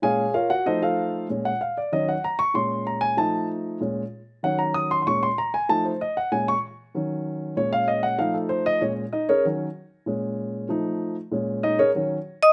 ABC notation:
X:1
M:4/4
L:1/8
Q:1/4=191
K:Bbm
V:1 name="Vibraphone"
z8 | z8 | z8 | z8 |
z8 | z8 | z8 | z8 |
z8 | z6 z [ee'] |]
V:2 name="Grand piano"
[Adfa]2 [FBdf] [Gg] [E=Ace] [FAcf]3 | z g f =d e g b _d' | c'2 b a =a2 z2 | z4 g b e' c' |
[c'd'] c' b a =a c e g | a d' z6 | d f e g f =A c e | d z [Ee] [DABd] z4 |
z8 | z2 [Ee] [DABd] z4 |]
V:3 name="Grand piano" clef=bass
[B,,A,D] z3 [F,=A,]4 | [B,,A,D] z3 [E,G,D] z3 | [B,,A,D]4 [F,=A,E]4 | [B,,A,D] z3 [E,G,D]4 |
[B,,A,D] z3 [F,=A,E] z3 | [B,,A,D] z3 [E,G,D]4 | [B,,A,D]4 [F,=A,E]4 | [B,,A,D] z3 [E,G,D] z3 |
[B,,A,D]4 [F,=A,E]3 z | [B,,A,D]3 z [E,G,D] z3 |]